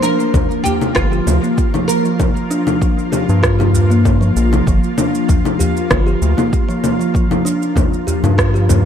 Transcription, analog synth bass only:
0.96 G1
1.27 D2
3.29 G2
4.36 A#1
4.67 G1
5.91 G1
6.22 D2
8.23 G2

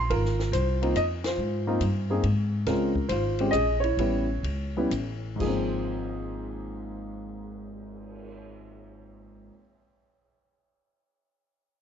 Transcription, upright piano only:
Already playing: C6
0.10 F4 A#4
0.53 C5
0.82 A#3 C4 D#4 F4
0.96 D#5
1.27 F4 C5
1.67 A#3 C4 D#4 F4
2.10 A#3 C4 D#4 G#4
2.67 G#3 C4 C#4 F4 A#4
3.09 F4 C5
3.40 G#3 C4 C#4 G4
3.51 G#4 D#5
3.80 E4 C#5
3.99 G3 B3 C#4 E4
4.77 G3 B3 C#4 E4
5.36 G#2 F3
5.41 A#3 G#4
5.47 C4

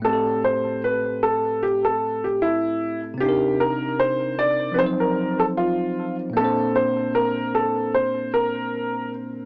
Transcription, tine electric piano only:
0.00 A2 A3
0.05 C4 G4
0.13 A4
3.14 C3 C4
3.21 D4 D#4
3.29 A#4
4.72 F3 C4
4.79 F#3 D#4
4.86 C5
6.30 A#2 A#3
6.37 C4 D4
6.44 C5

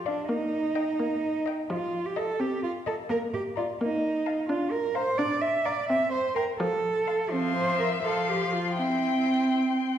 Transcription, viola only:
Already playing: F3
0.29 A#3
1.00 A#3
1.70 F3
2.40 C4
3.10 A#3
3.81 A#3
4.49 D4
5.19 D4
5.90 C4
6.60 F3
7.31 F3
8.04 F3
8.79 C4

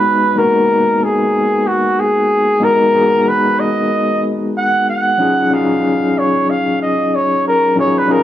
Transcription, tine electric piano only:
Already playing: G#3 B3 D#4 F#4 B4
0.35 G#3 A#3 D#4 F#4 A#4
0.43 B3
2.60 G#3 B3 D#4 F#4 A#4
2.92 G#3 B3 D#4 F#4 G#4
5.18 F#3 C#4 D#4 F4 G#4
5.50 F#3 C#4 D#4 F4 G#4
7.76 F#3 C#4 D#4 F4 G#4
8.07 F#3 C#4 D#4 F4 G#4

